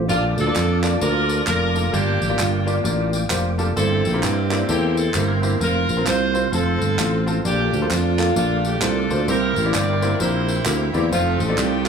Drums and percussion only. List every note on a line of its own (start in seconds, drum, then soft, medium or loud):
0.09 tambourine medium
0.38 tambourine medium
0.56 clap medium
0.56 tambourine medium
0.84 clap medium
0.84 tambourine medium
1.01 tambourine medium
1.29 tambourine medium
1.47 clap loud
1.47 tambourine loud
1.76 tambourine medium
1.94 tambourine medium
2.22 tambourine medium
2.39 clap medium
2.39 tambourine medium
2.67 tambourine medium
2.85 tambourine medium
3.13 tambourine medium
3.30 clap loud
3.30 tambourine loud
3.59 tambourine medium
3.77 tambourine medium
4.05 tambourine medium
4.23 clap medium
4.23 tambourine medium
4.51 clap medium
4.51 tambourine medium
4.69 tambourine medium
4.97 tambourine medium
5.14 clap loud
5.14 tambourine loud
5.43 tambourine medium
5.61 tambourine medium
5.89 tambourine medium
6.07 clap loud
6.07 tambourine medium
6.35 tambourine medium
6.53 tambourine medium
6.82 tambourine medium
6.99 clap medium
6.99 tambourine loud
7.28 tambourine medium
7.45 tambourine medium
7.73 tambourine medium
7.91 clap medium
7.91 tambourine medium
8.19 clap medium
8.19 tambourine medium
8.36 tambourine medium
8.65 tambourine medium
8.82 clap loud
8.82 tambourine medium
9.10 tambourine medium
9.28 tambourine medium
9.56 tambourine medium
9.74 clap medium
9.74 tambourine medium
10.02 tambourine medium
10.20 tambourine medium
10.48 tambourine medium
10.66 clap loud
10.66 tambourine loud
10.94 tambourine medium
11.12 tambourine medium
11.40 tambourine medium
11.58 clap loud
11.58 tambourine medium